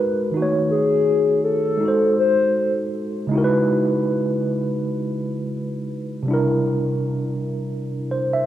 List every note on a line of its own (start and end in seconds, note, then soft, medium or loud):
0.00 0.32 G#3 medium
0.00 0.33 D#4 soft
0.00 0.34 F#4 soft
0.00 0.34 A#4 soft
0.00 0.35 B4 medium
0.31 1.78 D#3 medium
0.31 1.79 D#4 medium
0.37 1.82 A3 medium
0.37 1.80 F#4 medium
0.42 1.83 C#5 medium
0.71 1.41 G#4 medium
1.44 2.14 A4 medium
1.78 3.25 G#3 medium
1.78 3.26 D#4 medium
1.83 3.28 F#4 soft
1.83 3.29 A4 medium
1.88 3.30 C5 medium
2.19 2.73 C5 medium
3.27 6.21 C#3 medium
3.27 6.22 G#3 medium
3.32 6.23 D#4 medium
3.32 6.24 E4 medium
3.32 6.25 F#4 medium
3.38 3.41 A#4 medium
3.44 6.29 B4 medium
6.23 8.46 C3 medium
6.23 8.46 G3 medium
6.28 8.46 D4 medium
6.28 8.46 E4 medium
6.33 8.46 A#4 medium
8.11 8.30 C5 medium
8.33 8.46 E5 medium